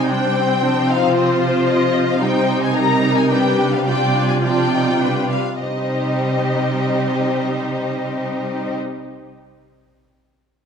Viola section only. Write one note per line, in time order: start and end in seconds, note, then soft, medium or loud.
0.00 0.62 G3 soft
0.09 0.36 D4 soft
0.36 1.14 C4 soft
0.63 2.22 F3 medium
1.15 1.41 C4 soft
1.41 2.20 F4 soft
2.22 2.76 G3 soft
2.22 2.75 D#4 soft
2.76 3.30 G3 soft
2.76 3.30 D#4 soft
3.31 4.40 G3 soft
3.31 3.86 D4 soft
3.87 4.41 D4 soft
4.42 5.00 F3 soft
4.42 4.99 F4 soft
5.00 5.37 G3 soft
5.00 5.37 D4 soft
5.60 8.75 G3 soft
5.60 8.76 D#4 soft